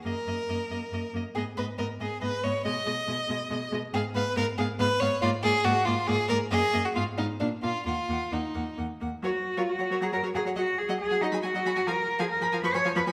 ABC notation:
X:1
M:3/4
L:1/16
Q:1/4=138
K:Ebm
V:1 name="Violin"
e2 e2 e2 e2 e2 e2 | e2 e2 e2 e2 e2 e2 | e2 e2 e2 e2 e2 e2 | f2 f2 f2 f2 f2 f2 |
=d2 d2 d2 d2 d2 d2 | e2 e2 f2 f2 f2 f2 | g2 g2 g2 g2 g2 g2 | [K:G#dor] c z2 c z f c a f c a f |
f z2 f z g f b g f b g | g z2 g z b g c' b g c' b |]
V:2 name="Violin"
B8- B2 z2 | A2 c2 B2 A2 c2 d2 | e8- e2 z2 | A2 c2 B2 A2 c2 d2 |
F2 A2 G2 F2 A2 B2 | A3 G F2 E2 =D2 F2 | F4 E4 z4 | [K:G#dor] A z2 A z c A f c A f c |
d z2 d z f d g f d g f | e z2 e z g e b g e b g |]
V:3 name="Viola"
B,2 B,2 B,2 B,2 B,2 B,2 | C2 C2 C2 C2 C2 C2 | A,2 A,2 A,2 A,2 A,2 A,2 | C2 C2 C2 C2 C2 C2 |
B,2 B,2 B,2 B,2 B,2 B,2 | B,2 B,2 C2 C2 B,2 B,2 | B,2 B,2 B,2 B,2 B,2 B,2 | [K:G#dor] F, z2 F, z F, F, F, F, F, F, F, |
F, z2 F, z F, F, F, F, F, F, F, | E, z2 E, z E, E, E, E, E, E, E, |]
V:4 name="Cello" clef=bass
G,,2 G,,2 G,,2 G,,2 G,,2 G,,2 | A,,2 A,,2 A,,2 A,,2 A,,2 A,,2 | C,2 C,2 C,2 C,2 C,2 C,2 | A,,2 A,,2 A,,2 A,,2 A,,2 A,,2 |
A,,2 A,,2 A,,2 A,,2 A,,2 A,,2 | G,,2 G,,2 A,,2 A,,2 B,,2 B,,2 | E,,2 E,,2 E,,2 E,,2 E,,2 E,,2 | [K:G#dor] F3 E F3 G A2 G2 |
F2 G2 G2 D2 F4 | A3 G A3 B c2 B2 |]